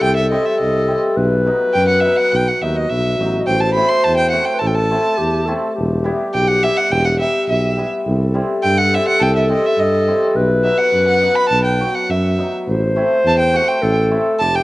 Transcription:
Already playing: hammered dulcimer G3, clarinet A4
0.02 tuba C2, violin G5
0.17 violin E5
0.31 hammered dulcimer G3 C4 E4, violin D#5
0.46 violin E5
0.61 tuba C2, violin D#5
0.88 hammered dulcimer G3 C4 E4
1.17 tuba B1, clarinet B4
1.46 hammered dulcimer F#3 B3 D#4
1.74 tuba F#2, violin G5
1.88 violin F#5
2.01 hammered dulcimer F#3 B3, violin E5
2.05 hammered dulcimer D#4
2.17 violin F#5
2.32 tuba B1, violin G5
2.48 violin F#5
2.61 tuba D#2, hammered dulcimer F#3 B3 D#4, violin E5
2.76 violin D#5
2.89 tuba B1, violin E5
3.19 tuba A1, hammered dulcimer F#3 B3 D#4
3.39 clarinet D#5
3.46 tuba A1, clarinet C5, violin G5
3.60 violin A5
3.74 hammered dulcimer A3 C4 E4, violin B5
3.89 violin C6
4.04 tuba E2, violin A5
4.17 violin G5
4.31 hammered dulcimer A3 C4 E4, violin F#5
4.45 violin G5
4.54 clarinet B4
4.59 tuba A1, clarinet A4, violin A5
4.67 violin G5
4.75 violin A5
4.91 hammered dulcimer A3 C4 E4
5.18 tuba E2, clarinet G4
5.45 hammered dulcimer A3 C4 E4, clarinet A4
5.75 tuba E1, clarinet G4
6.04 hammered dulcimer G3 B3 E4
6.34 tuba B1, violin G5
6.48 violin F#5
6.63 hammered dulcimer G3 B3 E4, violin E5
6.77 violin F#5
6.91 tuba E1, violin G5
7.05 violin F#5
7.20 hammered dulcimer G3 B3 D#4, violin E5
7.48 tuba B1, violin E5
7.77 hammered dulcimer G3 B3 E4
8.05 tuba C2, clarinet A4
8.34 hammered dulcimer G3 C4 E4
8.63 tuba G2, violin G5
8.78 violin F#5
8.93 hammered dulcimer G3 C4 E4, violin E5
9.08 violin F#5
9.19 tuba C2, violin G5 A5
9.36 violin E5
9.49 hammered dulcimer G3 C4 E4, violin D#5
9.66 violin E5
9.77 tuba G2, violin D#5
10.07 hammered dulcimer G3 C4 E4
10.35 tuba B1, clarinet B4
10.63 hammered dulcimer F#3 B3 D#4, violin E5
10.78 violin F#5
10.93 tuba F#2
11.08 violin F#5
11.21 hammered dulcimer F#3 B3 D#4
11.36 violin B5
11.49 tuba B1, violin A5
11.65 violin G5
11.80 hammered dulcimer F#3 B3 F#4
11.95 violin F#5
12.09 tuba F#2, violin E5
12.38 hammered dulcimer F#3 B3 D#4
12.65 tuba A1, clarinet C5
12.96 hammered dulcimer A3 C4 E4
13.25 tuba E2, violin A5
13.39 violin G5
13.53 hammered dulcimer A3 C4 F#4, violin F#5
13.68 violin G5
13.82 tuba A1, clarinet A4
14.11 hammered dulcimer A3 C4 E4
14.40 tuba F1, clarinet G4, violin A5
14.55 violin G5

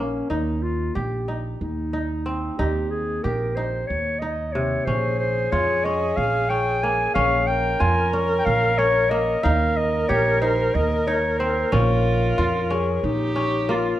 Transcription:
Already playing: upright bass A#1, kora A#3 C#4 F4, clarinet C#4
0.29 upright bass D#2, clarinet D#4, kora D#4
0.63 clarinet F4
0.95 upright bass A#1, kora G4, clarinet G4
1.28 kora D#4
1.61 upright bass D#2, clarinet D#4
1.93 kora D#4
2.26 kora C4
2.58 upright bass D#2, kora D#4, clarinet G4
2.90 clarinet G#4
3.23 upright bass A#1, kora G4, clarinet A#4
3.55 kora D#4, clarinet C5
3.87 upright bass D#2, clarinet C#5
4.19 kora D#4, clarinet D#5
4.53 kora C3, clarinet C#5
4.84 upright bass A#1, kora C#4, viola G#4, clarinet C5
5.19 clarinet C5
5.52 upright bass F2, kora F4, clarinet C#5
5.84 kora C#4, clarinet D#5
6.16 upright bass A#1, clarinet F5
6.49 kora C#4, clarinet G5
6.83 kora A#3, clarinet G#5
7.14 upright bass A#1, kora C#4, clarinet F5
7.47 viola A#4, clarinet G5
7.80 upright bass F2, kora F4, clarinet G#5
8.13 kora C#4
8.38 clarinet G5
8.46 upright bass A#1, clarinet F5
8.78 kora C#4, clarinet C#5
9.10 kora A#3, clarinet D#5
9.43 upright bass D#2, kora D#4, viola A#4, clarinet F5
9.76 clarinet D#5
10.09 upright bass A#1, kora G4, clarinet C#5
10.41 kora D#4, clarinet C5
10.75 upright bass D#2, clarinet D#5
11.07 kora D#4, clarinet C#5
11.39 kora C4, clarinet C5
11.72 upright bass A#1, kora C#4, viola F4, clarinet A#4
12.38 upright bass F2, kora F4
12.70 kora C#4, viola G#4
13.04 upright bass A#1, clarinet D#4, viola G4
13.36 kora C#4
13.69 kora A#3, viola F4, clarinet F4

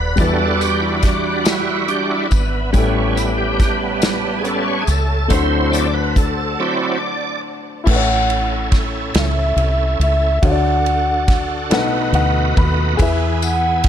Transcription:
Already playing: fingered electric bass D#1, grand piano G3 D4 F#4 B4, tonewheel organ B4, string section D5 F#5 B5
0.16 fingered electric bass E2, grand piano E3 G3 D4 E4, tonewheel organ G3 D4 F#4 A4, string section E5, kick, closed hi-hat, tambourine
0.21 grand piano B4
0.61 tonewheel organ G4, closed hi-hat, tambourine
0.81 tonewheel organ E4
0.95 tonewheel organ E4
1.02 tonewheel organ D4, kick, snare, closed hi-hat
1.44 tonewheel organ E4, snare, closed hi-hat, tambourine
1.87 tonewheel organ G3 D4 F#4 G4, closed hi-hat
2.11 tonewheel organ E4
2.30 fingered electric bass G#1, tonewheel organ B3, kick, closed hi-hat, tambourine
2.72 fingered electric bass A1, grand piano A2 G3 C#4, tonewheel organ G3 B3 C#4, string section C#5 A5, kick, closed hi-hat, tambourine
2.77 grand piano E4 A4
3.16 tonewheel organ E4, closed hi-hat, tambourine
3.38 tonewheel organ G4
3.60 kick, snare, closed hi-hat
4.02 snare, closed hi-hat, tambourine
4.38 tonewheel organ G#4
4.43 tonewheel organ G3 B3 C#4 A4, closed hi-hat
4.68 tonewheel organ C#5
4.81 tonewheel organ G#4
4.87 fingered electric bass C#2, tonewheel organ A4, closed hi-hat, tambourine
5.28 fingered electric bass D2, grand piano D3 A3 D4 F#4, tonewheel organ F#3 C4 E4 C5, string section C5 D5 F#5, kick, closed hi-hat, tambourine
5.33 grand piano C5
5.72 tonewheel organ D5, closed hi-hat, tambourine
5.94 tonewheel organ B4
6.16 tonewheel organ A4, kick, closed hi-hat
6.59 tonewheel organ F#3 C4 E4 D5
7.84 fingered electric bass A1, grand piano A2 E4 A4, tonewheel organ C#4 E4 A4, kick, crash
7.89 grand piano B4, soft synth lead F#5
7.96 grand piano C#5
8.30 ride
8.72 kick, snare, ride
9.14 fingered electric bass C#2, soft synth lead E5, snare, ride
9.56 fingered electric bass C2, ride
10.00 fingered electric bass C#2, soft synth lead E5, ride
10.42 fingered electric bass D2, grand piano D3 F#4 A4 C#5, tonewheel organ D4 F#4 G#4, kick, ride
10.47 tonewheel organ A4, soft synth lead F#5
10.52 grand piano D5
10.86 ride
11.28 kick, snare, ride
11.70 fingered electric bass B1, grand piano B2 D4 F#4 A4 B4 F#5, tonewheel organ A3 B3 D#4 F#4 B4, snare, ride
11.77 grand piano D#4
12.13 fingered electric bass D2, grand piano F#5, ride
12.57 fingered electric bass D#2, grand piano B5, kick, ride
12.97 fingered electric bass E2, grand piano E3 G#4 B4, tonewheel organ B3 E4 G#4, kick, ride, tambourine
13.02 grand piano E5
13.42 soft synth lead F#5, ride, tambourine
13.84 kick, snare, ride

